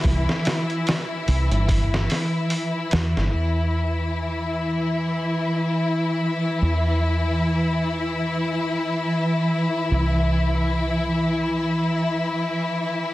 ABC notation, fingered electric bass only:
X:1
M:4/4
L:1/16
Q:"Swing 16ths" 1/4=73
K:Clyd
V:1 name="Fingered electric bass" clef=bass
C,, z4 z C,, G,,,3 z4 E,, G,,, | E,,16 | E,,16 | C,,16 |]